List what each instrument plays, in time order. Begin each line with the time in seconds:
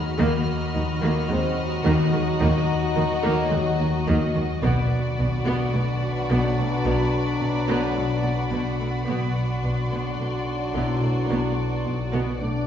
Already playing: synth drone D#2, french horn section D#3 F#3, violin section F#4 D#5 A#5 B5 F6
0.18 synth drone D#2, double bass section D#2, cello section D#3, marimba D#3, french horn section F#3 D#4, viola section A#3, violin section F#4 D#5
0.74 double bass section D#2, cello section D#3, marimba D#3, viola section A#3
1.01 cello section D#3, viola section A#3
1.29 double bass section D#2, cello section D#3, marimba D#3, viola section G#3, grand piano C4 C5
1.84 double bass section D#2, cello section D#3, marimba D#3, viola section A#3
2.12 cello section D#3, viola section G#3
2.40 double bass section D#2, cello section D#3, marimba D#3, viola section A#3
2.53 violin section F#6
2.96 double bass section D#2, cello section D#3, viola section A#3
3.23 cello section D#3, viola section A#3
3.51 double bass section D#2, cello section D#3, marimba D#3, viola section G#3
3.79 cello section D#3, viola section A#3
4.07 double bass section D#2, cello section D#3, viola section A#3, marimba D#4
4.35 cello section D#3, viola section G#3
4.62 synth drone B1, double bass section B1, cello section B2, marimba B2, french horn section F#3 D4, viola section B3, violin section F#4 D5 F#5 B5
5.18 double bass section B1, marimba B2, cello section B2, viola section B3
5.46 cello section B2, viola section B3
5.74 double bass section B1, cello section B2, marimba B2, viola section A3
6.29 double bass section B1, cello section B2, marimba B2, viola section B3
6.58 cello section B2, viola section A3
6.85 double bass section B1, cello section B2, marimba B2, viola section B3
7.41 double bass section B1, cello section B2, marimba B2, viola section B3
7.68 cello section B2, viola section B3
7.96 double bass section B1, marimba B2, cello section B2, viola section A3
8.24 cello section B2, viola section B3
8.51 double bass section B1, cello section B2, viola section B3, marimba B3
8.79 cello section B2, viola section A3
9.07 synth drone B1, double bass section B1, marimba B2, cello section B2, french horn section F#3 D4, viola section B3, violin section F#4 D5
9.62 double bass section B1, marimba B2, cello section B2, viola section B3
9.90 cello section B2, viola section B3
10.02 violin section C6
10.18 double bass section B1, marimba B2, cello section B2, viola section A3
10.74 double bass section B1, marimba B2, cello section B2, viola section B3, grand piano E4 E5
11.01 cello section B2, viola section A3
11.29 double bass section B1, marimba B2, cello section B2, viola section B3
11.85 double bass section B1, marimba B2, cello section B2, viola section B3
12.13 cello section B2, viola section B3
12.40 double bass section B1, marimba B2, cello section B2, viola section A3, french horn section D4, clarinet D4, violin section D5